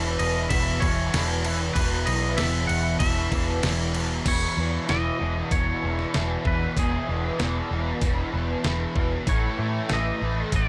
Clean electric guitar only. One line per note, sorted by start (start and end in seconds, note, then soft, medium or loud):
0.00 0.19 E5 loud
0.19 0.49 D#5 medium
0.50 0.82 E5 loud
0.80 1.73 C#5 medium
1.74 2.07 B4 medium
2.06 2.36 D#5 medium
2.37 2.67 E5 medium
2.67 2.99 F#5 medium
2.99 3.90 E5 medium
4.28 4.89 C#5 loud
4.90 5.52 D#5 loud
5.52 6.48 C#5 medium
6.47 6.78 B4 medium
6.79 7.99 G#4 medium
9.29 9.93 C#5 medium
9.93 10.50 D#5 medium
10.56 10.69 C#5 medium